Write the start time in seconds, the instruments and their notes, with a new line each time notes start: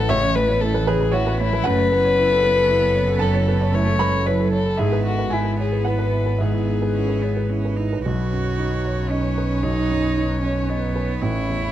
Already playing: grand piano A1 E4 B4 C#5 E5 F#5, double bass A1, analog synth pad C#4 E4 B4, violin A4
0.09 grand piano A1 E5, cello C#3, violin C#5
0.22 cello E3, grand piano C#5
0.35 cello A3, violin B4, grand piano B4
0.48 cello B3, grand piano C#5
0.61 cello A3, grand piano E4, violin A4
0.74 cello E3, grand piano B4
0.87 cello C#3, violin G#4, grand piano B4 C#5
1.01 cello E3, grand piano B4
1.12 cello A3, grand piano E4 C#5, violin F#4
1.27 cello B3, grand piano B4
1.40 cello A3, violin E4, grand piano C#5
1.53 cello E3, grand piano B4
1.64 double bass F#1, grand piano F#2 F#5, cello A3, analog synth pad C#4 A4, violin B4
1.79 grand piano C#5
1.92 cello B3, grand piano B4
2.05 grand piano C#5
2.18 grand piano E4
2.31 grand piano A4
2.44 grand piano B4
2.56 grand piano A4
2.69 grand piano E4
2.81 grand piano A4
2.95 grand piano C#5
3.09 grand piano A4
3.19 grand piano F#2 A5, violin A4
3.34 grand piano C#5
3.48 grand piano B4
3.61 grand piano C#5
3.73 cello A3, grand piano E4, violin C#5
3.87 grand piano A4
3.99 cello G#3, grand piano B4 B5
4.14 grand piano A4
4.26 cello F#3, grand piano E4 C#5, violin B4
4.40 grand piano A4
4.53 violin A4, grand piano C#5
4.66 grand piano A4
4.77 double bass G#1, grand piano G#2 E5, analog synth pad B3 E4 B4, cello B3, violin G#4
4.92 grand piano B4
5.06 violin F#4, grand piano A4
5.19 grand piano B4
5.30 cello B3, grand piano E4 G#5, violin E4
5.44 grand piano B4
5.59 violin G#4, grand piano C#5
5.72 grand piano B4
5.85 grand piano E4 F#5, violin B4
5.99 grand piano B4
6.13 grand piano E4
6.26 grand piano B4
6.39 grand piano G#2 E5, cello B3, violin G#4
6.54 grand piano E4
6.68 grand piano D#4
6.82 grand piano B4
6.95 cello C#4, grand piano E4
7.09 grand piano B4
7.22 cello B3, grand piano C#5
7.37 grand piano B4
7.49 cello C#4, grand piano E4
7.65 grand piano B4
7.77 cello D#4, grand piano E4
7.93 grand piano B4
8.05 double bass B1, grand piano B1, analog synth pad C#4 D#4 B4, cello F#4, violin C#5
8.33 grand piano F#2
8.59 grand piano D#4
8.85 grand piano C#5
9.10 cello C#4, grand piano D#5
9.38 grand piano B4
9.63 grand piano B1, cello D#4
9.90 grand piano F#2
10.17 grand piano D#4
10.42 cello C#4, grand piano C#5
10.70 cello B3, grand piano D#5
10.96 grand piano B4
11.21 double bass A1, grand piano A1, cello E4, analog synth pad E4, violin C#5
11.48 grand piano E2